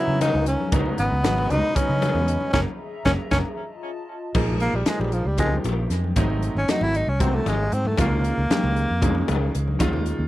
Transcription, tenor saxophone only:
0.00 0.21 E4 medium
0.22 0.46 D#4 medium
0.48 0.71 C#4 medium
0.99 1.52 B3 medium
1.50 1.77 D#4 loud
1.75 2.53 C#4 medium
2.53 2.60 C#4 medium
3.05 3.12 C#4 medium
3.31 3.38 C#4 medium
4.61 4.77 A#3 medium
4.75 4.89 G3 medium
4.88 5.02 G#3 medium
5.00 5.15 G3 medium
5.13 5.28 F3 medium
5.27 5.39 G3 medium
5.40 5.55 G#3 medium
6.58 6.71 C#4 medium
6.69 6.85 D#4 medium
6.83 6.98 E4 medium
6.97 7.10 D#4 medium
7.09 7.22 C#4 medium
7.20 7.36 C4 medium
7.35 7.50 A3 medium
7.48 7.75 G#3 medium
7.73 7.89 C4 medium
7.88 7.99 A3 medium
8.01 9.51 A#3 medium

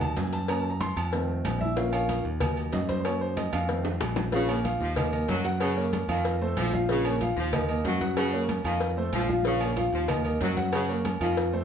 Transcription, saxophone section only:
4.33 4.59 C#3 loud
4.81 5.07 F3 medium
5.29 5.46 F#3 medium
5.61 5.86 C#3 medium
6.09 6.35 D#3 medium
6.58 6.74 F3 medium
6.89 7.15 C#3 loud
7.37 7.63 F3 medium
7.85 8.02 F#3 medium
8.17 8.43 C#3 loud
8.65 8.90 D#3 medium
9.13 9.30 F3 medium
9.45 9.70 C#3 loud
9.93 10.19 F3 medium
10.42 10.58 F#3 medium
10.73 10.99 C#3 loud
11.21 11.47 D#3 medium

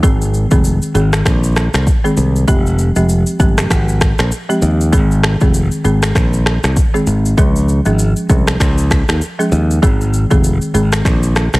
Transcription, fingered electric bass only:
0.03 0.45 G#1 loud
0.52 0.78 F1 medium
0.95 1.21 G#1 loud
1.25 1.67 A#1 loud
1.74 1.85 C2 medium
2.17 2.44 C2 medium
2.48 2.90 F1 loud
2.96 3.23 F1 medium
3.40 3.66 G1 medium
3.70 4.12 G#1 medium
4.19 4.30 A#1 medium
4.62 4.94 D#2 medium
4.93 5.34 G#1 loud
5.41 5.68 F1 medium
5.85 6.11 G#1 medium
6.15 6.57 A#1 medium
6.64 6.75 C2 medium
7.07 7.33 G#1 medium
7.38 7.79 C#2 loud
7.86 8.12 G#1 medium
8.30 8.56 C2 medium
8.60 9.02 C#2 loud
9.09 9.20 D#2 medium
9.52 9.78 D#2 medium
9.83 10.24 G#1 loud
10.31 10.57 F1 medium
10.74 11.01 G#1 loud
11.05 11.47 A#1 loud
11.54 11.60 C2 medium

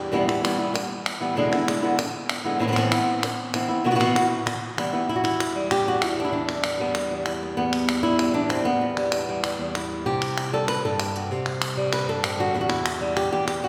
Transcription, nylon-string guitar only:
0.00 0.10 E2 medium
0.00 0.11 G3 soft
0.00 0.12 D4 medium
0.00 0.13 G4 medium
0.12 0.27 E2 medium
0.12 0.27 B2 medium
0.12 0.28 E3 medium
0.12 0.28 G3 medium
0.12 0.27 B3 medium
0.12 0.27 E4 medium
0.28 0.41 E3 soft
0.28 0.42 G3 soft
0.28 0.43 B3 soft
0.28 0.43 E4 medium
0.43 0.58 E3 soft
0.43 0.59 G3 medium
0.43 0.58 B3 medium
0.43 0.57 E4 medium
0.58 0.73 E3 soft
0.58 0.73 G3 soft
0.58 0.73 B3 soft
0.58 0.74 E4 medium
0.74 muted nylon-string guitar stroke medium
1.21 1.37 E3 soft
1.21 1.37 G3 soft
1.21 1.36 B3 medium
1.21 1.36 E4 soft
1.36 1.51 E2 medium
1.36 1.52 B2 medium
1.36 1.52 D3 medium
1.36 1.51 G#3 medium
1.36 1.51 B3 medium
1.36 1.50 E4 medium
1.51 1.66 D3 soft
1.51 1.67 G#3 soft
1.51 1.67 B3 soft
1.51 1.67 E4 medium
1.68 1.83 D3 medium
1.68 1.83 G#3 medium
1.68 1.82 B3 medium
1.68 1.81 E4 medium
1.82 1.98 D3 soft
1.82 1.98 G#3 soft
1.82 1.98 B3 soft
1.82 1.98 E4 medium
1.99 muted nylon-string guitar stroke medium
2.45 2.59 D3 soft
2.45 2.60 G#3 soft
2.45 2.60 B3 medium
2.45 2.60 E4 medium
2.59 2.75 A2 medium
2.59 2.62 E3 medium
2.59 2.66 E3 medium
2.59 2.63 B3 medium
2.59 2.63 C4 medium
2.59 2.64 E4 medium
2.64 2.71 E3 medium
2.64 2.67 C4 medium
2.68 2.72 B3 medium
2.68 2.71 C4 medium
2.68 2.72 E4 medium
2.72 2.76 E3 medium
2.72 2.76 B3 medium
2.72 2.76 C4 medium
2.72 2.77 E4 medium
2.76 2.91 A2 medium
2.76 2.91 E3 medium
2.76 2.92 B3 medium
2.76 2.92 C4 medium
2.76 2.90 E4 medium
2.91 3.23 B3 medium
2.91 3.23 C4 soft
2.91 3.22 E4 medium
3.23 muted nylon-string guitar stroke medium
3.54 3.69 E3 medium
3.54 3.69 B3 medium
3.54 3.69 C4 medium
3.54 3.67 E4 medium
3.69 3.84 B3 medium
3.69 3.85 C4 soft
3.69 3.84 E4 medium
3.84 3.98 B2 medium
3.84 3.87 E3 medium
3.84 3.88 B3 medium
3.84 3.88 E4 medium
3.84 3.88 F#4 medium
3.91 3.94 E3 medium
3.91 3.94 B3 medium
3.91 3.95 E4 medium
3.91 3.95 F#4 medium
3.95 3.98 E3 medium
3.95 3.99 B3 medium
3.95 3.99 E4 medium
3.95 3.99 F#4 medium
4.00 4.15 B2 medium
4.00 4.15 E3 medium
4.00 4.15 B3 medium
4.00 4.15 E4 medium
4.00 4.14 F#4 medium
4.15 4.45 B3 soft
4.15 4.46 E4 soft
4.15 4.46 F#4 medium
4.46 muted nylon-string guitar stroke medium
4.77 4.92 E3 medium
4.77 4.93 G3 medium
4.77 4.92 B3 medium
4.77 4.92 E4 medium
4.93 5.09 E3 soft
4.93 5.09 G3 soft
4.93 5.08 B3 soft
4.93 5.08 E4 soft
5.09 5.85 E2 medium
5.09 5.22 E4 medium
5.16 5.54 F#4 medium
5.24 5.71 E4 medium
5.55 6.80 G3 medium
5.72 6.04 G4 loud
5.86 6.32 E2 medium
5.86 6.18 F#4 medium
6.04 6.23 E4 medium
6.20 6.31 D4 medium
6.25 6.62 E4 medium
6.32 7.11 E2 medium
6.32 7.26 D4 medium
6.50 6.65 B3 soft
6.65 6.81 B3 soft
6.80 8.04 G3 medium
6.80 6.96 B3 soft
6.97 7.42 B3 medium
7.11 7.57 E2 medium
7.27 7.57 E4 soft
7.43 7.57 B3 soft
7.57 8.34 E2 medium
7.57 8.34 B3 medium
8.03 8.20 G3 medium
8.03 8.66 E4 loud
8.21 8.98 G3 soft
8.34 8.80 E2 medium
8.34 8.65 D4 loud
8.49 8.66 C4 medium
8.65 9.75 B3 medium
8.81 9.58 E2 medium
8.98 9.12 G3 soft
9.13 9.28 G3 soft
9.29 9.45 G3 medium
9.45 10.53 G3 medium
9.59 10.06 E2 medium
9.76 11.16 E4 soft
9.92 10.05 B3 soft
10.06 10.84 C3 medium
10.06 10.53 G4 medium
10.53 11.77 G3 medium
10.53 10.68 A4 medium
10.69 10.84 B4 loud
10.85 11.29 G2 medium
10.85 11.00 A4 loud
11.00 11.30 G4 loud
11.16 11.62 F#4 medium
11.31 12.08 C3 medium
11.31 11.93 G4 medium
11.77 12.39 G3 medium
11.93 12.08 B4 loud
12.08 12.53 G2 medium
12.08 12.24 A4 loud
12.23 12.39 C3 medium
12.23 12.55 G4 medium
12.39 12.55 D3 medium
12.39 12.55 F#4 medium
12.54 13.32 E2 medium
12.54 12.68 E4 medium
12.61 12.99 F#4 medium
12.69 13.16 E4 medium
13.01 13.68 G3 medium
13.17 13.31 G4 medium
13.32 13.68 E2 medium
13.32 13.46 G4 medium
13.47 13.68 G4 medium
13.64 13.68 F#4 medium

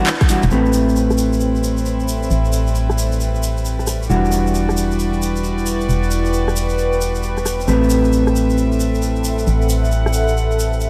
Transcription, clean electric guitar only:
0.29 0.44 E3 medium
0.29 0.44 G3 medium
0.29 0.44 D4 medium
0.29 0.44 F#4 loud
0.51 4.08 A3 medium
0.51 4.08 C4 medium
0.51 4.08 G4 medium
0.51 4.08 B4 medium
4.09 7.66 E3 medium
4.09 7.66 G3 medium
4.09 7.66 D4 medium
4.09 7.66 F#4 medium
7.67 10.90 A3 medium
7.67 10.90 C4 medium
7.67 10.90 G4 medium
7.67 10.90 B4 medium

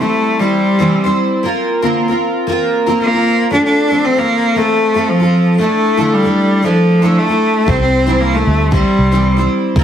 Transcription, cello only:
0.00 0.41 A3 medium
0.39 1.17 G3 medium
3.01 3.49 A#3 medium
3.53 3.64 D4 medium
3.65 4.07 D4 medium
4.05 4.20 C4 medium
4.19 4.59 A#3 medium
4.57 5.11 A3 medium
5.09 5.60 F3 medium
5.60 6.15 A3 medium
6.13 6.66 G3 medium
6.65 7.19 F3 medium
7.18 7.70 A3 medium
7.68 7.81 C4 medium
7.81 8.22 C4 medium
8.21 8.36 A#3 medium
8.35 8.73 A3 medium
8.74 9.47 G3 medium

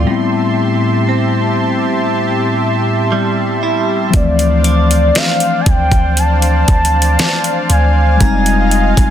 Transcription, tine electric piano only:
0.04 4.08 A2 medium
0.04 4.09 G3 medium
0.04 4.10 B3 medium
0.09 4.11 C4 medium
0.09 4.11 E4 medium
4.10 8.15 F3 medium
4.10 8.16 A3 medium
4.15 8.18 E3 medium
4.15 8.17 C4 medium
8.17 9.10 G3 medium
8.17 9.10 G#3 medium
8.22 9.10 C4 medium
8.22 9.10 D#4 medium

